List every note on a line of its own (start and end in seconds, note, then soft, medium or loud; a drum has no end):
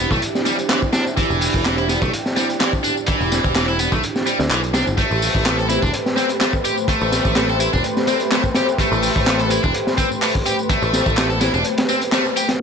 0.00 4.95 D4 medium
0.00 4.95 E4 medium
0.00 4.95 G4 medium
0.11 0.19 B1 medium
0.11 0.20 A3 medium
0.11 kick medium
0.11 tambourine soft
0.22 closed hi-hat medium
0.22 tambourine soft
0.35 snare soft
0.35 tambourine soft
0.45 0.56 G3 medium
0.45 snare soft
0.45 closed hi-hat medium
0.45 tambourine medium
0.59 closed hi-hat soft
0.59 tambourine soft
0.69 0.80 E3 medium
0.69 snare loud
0.69 clap loud
0.69 closed hi-hat medium
0.69 tambourine soft
0.82 kick medium
0.82 tambourine soft
0.93 1.03 D4 medium
0.93 snare loud
0.93 closed hi-hat medium
0.93 tambourine medium
1.07 tambourine soft
1.17 1.64 E3 medium
1.17 muted picked electric bass stroke soft
1.17 kick loud
1.17 closed hi-hat medium
1.17 tambourine soft
1.30 1.48 E1 loud
1.30 tambourine soft
1.41 open hi-hat medium
1.41 tambourine medium
1.54 1.97 E1 medium
1.54 kick medium
1.54 tambourine soft
1.65 1.75 E3 medium
1.65 snare loud
1.65 clap loud
1.65 closed hi-hat medium
1.65 tambourine soft
1.78 1.87 E4 medium
1.78 closed hi-hat soft
1.78 tambourine soft
1.89 1.99 B3 medium
1.89 snare soft
1.89 closed hi-hat medium
1.89 tambourine medium
2.02 2.10 B1 medium
2.02 2.10 A3 medium
2.02 kick medium
2.02 tambourine soft
2.13 closed hi-hat medium
2.13 tambourine soft
2.26 snare soft
2.26 tambourine soft
2.36 2.46 G3 medium
2.36 snare soft
2.36 closed hi-hat medium
2.36 tambourine medium
2.49 closed hi-hat soft
2.49 tambourine soft
2.60 2.70 E3 medium
2.60 snare loud
2.60 clap loud
2.60 closed hi-hat medium
2.60 tambourine soft
2.73 kick medium
2.73 tambourine soft
2.84 2.94 D4 medium
2.84 closed hi-hat medium
2.84 tambourine medium
2.97 tambourine soft
3.06 3.54 E3 medium
3.06 muted picked electric bass stroke soft
3.06 kick loud
3.06 closed hi-hat medium
3.06 tambourine soft
3.21 3.38 E1 loud
3.21 tambourine soft
3.32 snare soft
3.32 closed hi-hat medium
3.32 tambourine medium
3.44 3.87 E1 medium
3.44 kick medium
3.44 tambourine soft
3.55 3.65 E3 medium
3.55 snare loud
3.55 clap loud
3.55 closed hi-hat medium
3.55 tambourine soft
3.68 3.77 E4 medium
3.68 tambourine soft
3.79 3.89 B3 medium
3.79 closed hi-hat medium
3.79 tambourine medium
3.92 4.00 B1 medium
3.92 4.01 A3 medium
3.92 kick medium
3.92 tambourine soft
4.03 closed hi-hat medium
4.03 tambourine soft
4.16 snare medium
4.16 tambourine soft
4.27 4.37 G3 medium
4.27 closed hi-hat medium
4.27 tambourine medium
4.39 4.48 D2 loud
4.39 snare medium
4.39 tambourine soft
4.51 4.82 B1 medium
4.51 4.61 E3 medium
4.51 clap loud
4.51 closed hi-hat medium
4.51 tambourine soft
4.63 closed hi-hat soft
4.63 tambourine soft
4.74 4.85 D4 medium
4.74 snare loud
4.74 closed hi-hat medium
4.74 tambourine medium
4.87 4.96 G1 medium
4.87 tambourine soft
4.98 12.56 A3 medium
4.98 5.45 A3 medium
4.98 12.56 G4 medium
4.98 12.56 B4 medium
4.98 12.56 C5 loud
4.98 muted picked electric bass stroke soft
4.98 kick loud
4.98 closed hi-hat medium
4.98 tambourine soft
5.11 5.29 A1 loud
5.11 tambourine soft
5.22 open hi-hat medium
5.22 tambourine medium
5.35 5.77 A1 medium
5.35 kick loud
5.35 tambourine soft
5.45 5.56 A3 medium
5.45 snare loud
5.45 clap loud
5.45 closed hi-hat medium
5.45 tambourine soft
5.59 5.67 A4 medium
5.59 closed hi-hat soft
5.59 tambourine soft
5.69 5.80 E4 medium
5.69 snare soft
5.69 closed hi-hat medium
5.69 tambourine medium
5.82 5.91 E1 medium
5.82 5.91 D4 medium
5.82 kick medium
5.82 tambourine soft
5.94 closed hi-hat medium
5.94 tambourine soft
6.06 snare medium
6.06 tambourine soft
6.17 6.27 C4 medium
6.17 snare medium
6.17 closed hi-hat medium
6.17 tambourine medium
6.29 closed hi-hat soft
6.29 tambourine soft
6.41 6.51 A3 medium
6.41 snare loud
6.41 clap loud
6.41 closed hi-hat medium
6.41 tambourine soft
6.53 kick medium
6.53 tambourine soft
6.65 6.75 G4 medium
6.65 closed hi-hat medium
6.65 tambourine medium
6.77 tambourine soft
6.88 7.35 A3 medium
6.88 muted picked electric bass stroke soft
6.88 kick loud
6.88 closed hi-hat medium
6.88 tambourine soft
7.01 7.19 A1 loud
7.01 tambourine soft
7.12 snare soft
7.12 closed hi-hat medium
7.12 tambourine medium
7.25 7.68 A1 medium
7.25 kick medium
7.25 tambourine soft
7.35 7.46 A3 medium
7.35 snare loud
7.35 clap medium
7.35 closed hi-hat medium
7.35 tambourine soft
7.49 7.58 A4 medium
7.49 tambourine soft
7.60 7.70 E4 medium
7.60 closed hi-hat medium
7.60 tambourine medium
7.73 7.82 E1 medium
7.73 7.82 D4 medium
7.73 kick medium
7.73 tambourine soft
7.84 closed hi-hat medium
7.84 tambourine soft
7.97 snare soft
7.97 tambourine soft
8.07 8.18 C4 medium
8.07 snare soft
8.07 closed hi-hat medium
8.07 tambourine medium
8.20 closed hi-hat soft
8.20 tambourine soft
8.31 8.42 A3 medium
8.31 snare loud
8.31 clap loud
8.31 closed hi-hat medium
8.31 tambourine soft
8.44 kick medium
8.44 tambourine soft
8.55 8.66 G4 medium
8.55 snare loud
8.55 closed hi-hat medium
8.55 tambourine medium
8.69 tambourine soft
8.78 9.26 A3 medium
8.78 muted picked electric bass stroke soft
8.78 kick loud
8.78 closed hi-hat medium
8.78 tambourine soft
8.92 9.09 A1 loud
8.92 tambourine soft
9.02 open hi-hat medium
9.02 tambourine medium
9.16 9.59 A1 medium
9.16 kick loud
9.16 tambourine soft
9.26 9.37 A3 medium
9.26 snare loud
9.26 clap loud
9.26 closed hi-hat medium
9.26 tambourine soft
9.39 9.48 A4 medium
9.39 closed hi-hat soft
9.39 tambourine soft
9.50 9.61 E4 medium
9.50 closed hi-hat medium
9.50 tambourine medium
9.63 9.72 E1 medium
9.63 9.72 D4 medium
9.63 kick medium
9.63 tambourine soft
9.74 closed hi-hat medium
9.74 tambourine soft
9.87 snare medium
9.87 tambourine soft
9.98 10.08 C4 medium
9.98 kick loud
9.98 closed hi-hat medium
9.98 tambourine medium
10.12 tambourine soft
10.22 10.32 A3 medium
10.22 clap loud
10.22 open hi-hat medium
10.22 tambourine soft
10.35 kick medium
10.35 tambourine soft
10.46 10.56 G4 medium
10.46 closed hi-hat medium
10.46 tambourine medium
10.59 tambourine soft
10.69 11.16 A3 medium
10.69 muted picked electric bass stroke soft
10.69 kick loud
10.69 closed hi-hat medium
10.69 tambourine soft
10.82 11.00 A1 loud
10.82 tambourine soft
10.93 snare medium
10.93 closed hi-hat medium
10.93 tambourine medium
11.06 11.49 A1 medium
11.06 kick medium
11.06 tambourine soft
11.17 11.27 A3 medium
11.17 snare loud
11.17 clap loud
11.17 closed hi-hat medium
11.17 tambourine soft
11.30 11.39 A4 medium
11.30 tambourine soft
11.41 11.51 E4 medium
11.41 snare loud
11.41 closed hi-hat medium
11.41 tambourine medium
11.54 11.62 E1 medium
11.54 11.63 D4 medium
11.54 tambourine soft
11.64 closed hi-hat medium
11.64 tambourine soft
11.78 snare loud
11.78 closed hi-hat medium
11.78 tambourine soft
11.89 11.99 C4 medium
11.89 tambourine medium
12.01 closed hi-hat medium
12.01 tambourine soft
12.12 12.23 A3 medium
12.12 snare loud
12.12 clap loud
12.12 closed hi-hat medium
12.12 tambourine soft
12.26 tambourine soft
12.36 12.47 G4 medium
12.36 closed hi-hat medium
12.36 tambourine medium
12.49 snare loud
12.49 closed hi-hat medium
12.49 tambourine soft